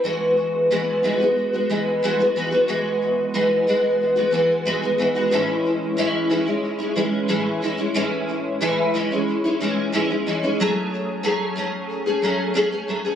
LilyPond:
\new Staff \with { instrumentName = "Steel-string acoustic guitar" } { \time 4/4 \key e \major \tempo 4 = 91 <e gis b fis'>4 <e gis b fis'>8 <e gis b fis'>16 <gis b fis'>8 <gis b fis'>16 <e gis b fis'>8 <e gis b fis'>16 <gis b fis'>16 <e gis b fis'>16 <gis b fis'>16 | <e gis b fis'>4 <e gis b fis'>8 <e gis b fis'>8. <gis b fis'>16 <e gis b fis'>8 <e gis b fis'>16 <gis b fis'>16 <e gis b fis'>16 <gis b fis'>16 | <a, e gis cis' e'>4 <a, e gis cis' e'>8 <e gis cis' e'>16 <gis cis' e'>8 <gis cis' e'>16 <e gis cis' e'>8 <a, e gis cis' e'>8 <e gis cis' e'>16 <gis cis' e'>16 | <a, e gis cis' e'>4 <a, e gis cis' e'>8 <e gis cis' e'>16 <gis cis' e'>8 <gis cis' e'>16 <e gis cis' e'>8 <a, e gis cis' e'>16 <gis cis' e'>16 <e gis cis' e'>16 <gis cis' e'>16 |
<fis a cis' gis'>4 <fis a cis' gis'>8 <fis a cis' gis'>8. <a cis' gis'>16 <fis a cis' gis'>8 <fis a cis' gis'>16 <a cis' gis'>16 <fis a cis' gis'>16 <a cis' gis'>16 | }